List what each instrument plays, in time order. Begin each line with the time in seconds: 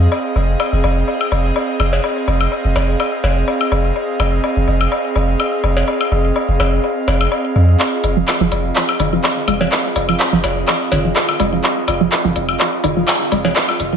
Already playing: analog synth pad C4 G#4 D#5 F5, synth texture G#4
0.12 low woodblock
0.36 sub bass F1, low woodblock
0.60 high woodblock, low woodblock
0.73 sub bass F1
0.84 sub bass F1, low woodblock
1.08 low woodblock
1.21 high woodblock
1.32 sub bass F1, low woodblock
1.56 low woodblock
1.80 sub bass F1, high woodblock, low woodblock
1.93 cowbell
2.04 low woodblock
2.28 sub bass F1, low woodblock
2.41 high woodblock
2.52 low woodblock
2.65 sub bass F1
2.76 sub bass F1, cowbell, low woodblock
3.00 high woodblock, low woodblock
3.24 sub bass F1, cowbell, low woodblock
3.48 low woodblock
3.61 high woodblock
3.72 sub bass F1, low woodblock
3.96 low woodblock
4.20 sub bass F1, high woodblock, low woodblock
4.44 low woodblock
4.57 sub bass F1
4.68 sub bass F1, low woodblock
4.81 high woodblock
4.92 low woodblock
5.16 sub bass F1, low woodblock
5.40 high woodblock, low woodblock
5.64 sub bass F1, low woodblock
5.77 cowbell
5.88 low woodblock
6.01 high woodblock
6.12 sub bass F1, low woodblock
6.36 low woodblock
6.48 sub bass F1
6.60 sub bass F1, cowbell, high woodblock, low woodblock
6.84 low woodblock
7.08 sub bass F1, cowbell, low woodblock
7.21 high woodblock
7.32 low woodblock
7.56 sub bass F2, low woodblock
7.80 synth texture F4, clap, low woodblock
8.04 sub bass F1, open hi-hat, low woodblock
8.17 synth arpeggio sound F3
8.28 clap, high woodblock, low woodblock
8.40 sub bass F1, synth arpeggio sound F3
8.52 sub bass F1, open hi-hat, low woodblock
8.76 clap, low woodblock
8.89 high woodblock
9.00 sub bass F1, synth arpeggio sound D#3, open hi-hat, low woodblock
9.13 synth arpeggio sound F3
9.24 clap, low woodblock
9.48 sub bass F1, synth arpeggio sound G#3, open hi-hat, high woodblock, low woodblock
9.61 synth arpeggio sound F3, cowbell
9.72 clap, low woodblock
9.96 sub bass F1, open hi-hat, low woodblock
10.09 synth arpeggio sound F3, high woodblock
10.20 clap, low woodblock
10.33 sub bass F1, synth arpeggio sound F3
10.44 sub bass F1, open hi-hat, cowbell, low woodblock
10.68 clap, high woodblock, low woodblock
10.92 sub bass F1, synth arpeggio sound D#3, open hi-hat, cowbell, low woodblock
11.05 synth arpeggio sound F3
11.16 clap, low woodblock
11.29 high woodblock
11.40 sub bass F1, synth arpeggio sound G#3, open hi-hat, low woodblock
11.53 synth arpeggio sound F3
11.64 clap, low woodblock
11.88 sub bass F1, open hi-hat, high woodblock, low woodblock
12.01 synth arpeggio sound F3
12.12 clap, low woodblock
12.25 sub bass F1, synth arpeggio sound F3
12.36 sub bass F1, open hi-hat, low woodblock
12.49 high woodblock
12.60 clap, low woodblock
12.84 sub bass F1, synth arpeggio sound D#3, open hi-hat, low woodblock
12.97 synth arpeggio sound F3
13.08 clap, high woodblock, low woodblock
13.32 sub bass F1, synth arpeggio sound G#3, open hi-hat, low woodblock
13.45 synth arpeggio sound F3, cowbell
13.56 clap, low woodblock
13.69 high woodblock
13.80 sub bass F1, open hi-hat, low woodblock
13.93 synth arpeggio sound F3